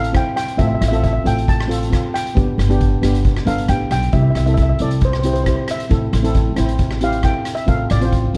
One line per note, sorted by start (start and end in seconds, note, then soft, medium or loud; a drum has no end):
0.00 0.21 A1 medium
0.00 0.14 F5 medium
0.04 closed hi-hat medium
0.13 0.40 C4 medium
0.13 0.41 E4 medium
0.13 0.41 C5 medium
0.13 0.35 G5 medium
0.13 kick medium
0.13 cross-stick medium
0.13 closed hi-hat medium
0.36 0.59 G5 medium
0.36 cross-stick medium
0.36 closed hi-hat medium
0.48 closed hi-hat soft
0.57 0.77 A1 medium
0.57 0.78 C4 medium
0.57 0.79 F4 medium
0.57 0.79 A4 medium
0.57 0.66 E5 medium
0.57 kick medium
0.57 closed hi-hat medium
0.67 0.73 E5 medium
0.74 0.80 E5 medium
0.81 1.18 A1 medium
0.81 0.87 E5 medium
0.81 cross-stick medium
0.81 closed hi-hat medium
0.88 1.12 C4 medium
0.88 1.12 F4 medium
0.88 0.95 E5 medium
0.93 1.13 A4 medium
0.93 1.02 E5 medium
0.93 closed hi-hat soft
1.04 1.11 E5 medium
1.04 kick medium
1.04 closed hi-hat medium
1.13 1.19 E5 medium
1.24 1.98 A1 medium
1.24 1.52 C4 medium
1.24 1.52 F4 soft
1.24 1.52 A4 medium
1.24 1.47 G5 medium
1.24 closed hi-hat medium
1.38 closed hi-hat medium
1.48 2.11 A5 medium
1.48 kick medium
1.48 closed hi-hat soft
1.60 cross-stick medium
1.68 1.83 C4 medium
1.68 1.83 F4 medium
1.68 1.83 A4 medium
1.68 closed hi-hat medium
1.83 closed hi-hat medium
1.90 2.18 C4 medium
1.90 2.18 F4 soft
1.90 2.19 A4 medium
1.90 kick medium
1.90 cross-stick medium
1.90 closed hi-hat medium
2.14 3.51 G5 medium
2.14 cross-stick medium
2.14 closed hi-hat medium
2.27 closed hi-hat medium
2.35 2.55 G1 medium
2.35 2.56 B3 medium
2.35 2.56 D4 medium
2.35 2.56 G4 medium
2.35 kick medium
2.35 closed hi-hat medium
2.58 2.95 G1 medium
2.58 cross-stick medium
2.58 closed hi-hat medium
2.69 2.89 B3 medium
2.69 2.90 D4 medium
2.69 2.90 G4 medium
2.69 closed hi-hat medium
2.81 kick medium
2.81 closed hi-hat medium
3.02 3.39 G1 medium
3.02 3.29 B3 medium
3.02 3.30 D4 medium
3.02 3.30 G4 medium
3.02 cross-stick medium
3.02 closed hi-hat medium
3.15 closed hi-hat soft
3.25 kick medium
3.25 closed hi-hat medium
3.36 cross-stick medium
3.46 3.67 G1 medium
3.46 3.60 B3 medium
3.46 3.61 D4 medium
3.46 3.61 A4 medium
3.46 3.68 F5 medium
3.46 closed hi-hat medium
3.58 closed hi-hat medium
3.68 3.89 A1 medium
3.68 3.96 B3 medium
3.68 3.96 D4 soft
3.68 3.97 G4 medium
3.68 3.91 G5 medium
3.68 kick medium
3.68 cross-stick medium
3.68 closed hi-hat medium
3.91 4.11 B1 medium
3.91 4.14 G5 medium
3.91 cross-stick medium
3.91 closed hi-hat medium
4.03 closed hi-hat soft
4.13 4.32 C2 medium
4.13 4.33 C4 medium
4.13 4.34 E4 medium
4.13 4.34 G4 medium
4.13 4.21 E5 medium
4.13 kick medium
4.13 closed hi-hat soft
4.23 4.29 E5 medium
4.30 4.36 E5 medium
4.35 4.72 C2 medium
4.35 4.44 E5 medium
4.35 cross-stick medium
4.35 closed hi-hat medium
4.46 4.67 C4 medium
4.46 4.67 E4 medium
4.46 4.68 A4 medium
4.46 4.52 E5 medium
4.46 closed hi-hat soft
4.54 4.60 E5 medium
4.54 kick medium
4.54 closed hi-hat medium
4.63 4.68 E5 medium
4.69 4.75 E5 medium
4.79 5.53 C2 medium
4.79 5.07 C4 medium
4.79 5.07 E4 soft
4.79 5.08 A4 medium
4.79 5.01 D5 medium
4.79 closed hi-hat medium
4.91 closed hi-hat medium
5.01 5.11 C5 medium
5.01 kick loud
5.01 closed hi-hat medium
5.12 5.18 C5 soft
5.12 cross-stick medium
5.19 5.25 C5 medium
5.23 5.38 C4 medium
5.23 5.38 E4 medium
5.23 5.38 G4 medium
5.23 5.32 C5 medium
5.23 closed hi-hat medium
5.33 5.41 C5 medium
5.33 closed hi-hat medium
5.44 5.73 C4 medium
5.44 5.73 E4 soft
5.44 5.74 G4 medium
5.44 5.47 C5 medium
5.44 kick medium
5.44 cross-stick medium
5.44 closed hi-hat medium
5.48 5.55 C5 medium
5.56 5.63 C5 medium
5.68 6.99 E5 medium
5.68 cross-stick medium
5.68 closed hi-hat medium
5.80 closed hi-hat medium
5.89 6.09 A1 medium
5.89 6.10 C4 medium
5.89 6.10 E4 medium
5.89 6.11 A4 medium
5.89 kick medium
5.89 closed hi-hat medium
6.13 6.49 A1 medium
6.13 cross-stick medium
6.13 closed hi-hat medium
6.23 6.44 C4 medium
6.23 6.44 E4 medium
6.23 6.44 A4 medium
6.23 closed hi-hat medium
6.35 kick medium
6.35 closed hi-hat medium
6.56 7.31 A1 medium
6.56 6.84 C4 medium
6.56 6.84 E4 medium
6.56 6.84 C5 medium
6.56 cross-stick medium
6.56 closed hi-hat medium
6.69 closed hi-hat medium
6.79 kick medium
6.79 closed hi-hat soft
6.91 cross-stick medium
7.01 7.15 C4 medium
7.01 7.16 E4 medium
7.01 7.16 G4 medium
7.01 7.26 F5 medium
7.01 closed hi-hat medium
7.13 closed hi-hat medium
7.23 7.50 C4 medium
7.23 7.50 E4 medium
7.23 7.51 A4 medium
7.23 7.45 G5 medium
7.23 kick medium
7.23 cross-stick medium
7.23 closed hi-hat medium
7.45 cross-stick medium
7.45 closed hi-hat medium
7.55 7.68 E5 medium
7.55 closed hi-hat soft
7.66 7.86 A1 medium
7.66 7.87 C4 medium
7.66 7.88 F4 medium
7.66 7.88 A4 medium
7.66 7.78 F5 medium
7.66 kick medium
7.66 closed hi-hat soft
7.90 8.27 A1 medium
7.90 8.36 D5 medium
7.90 cross-stick medium
7.90 closed hi-hat medium
8.01 8.21 C4 medium
8.01 8.22 F4 medium
8.01 8.22 C5 medium
8.01 closed hi-hat soft
8.12 kick medium
8.12 closed hi-hat medium
8.34 8.37 A1 medium
8.34 8.37 C4 medium